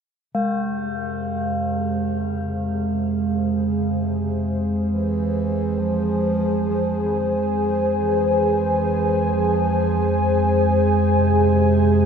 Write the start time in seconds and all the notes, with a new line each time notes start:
0.35 F2 C3 G#3 G#4 F5
0.67 C5
2.19 C#3
2.65 C3
3.07 G#5
3.55 C#3
4.01 C3
4.90 E3
5.79 F3
6.70 F3
7.98 E3
9.33 F3
11.12 C3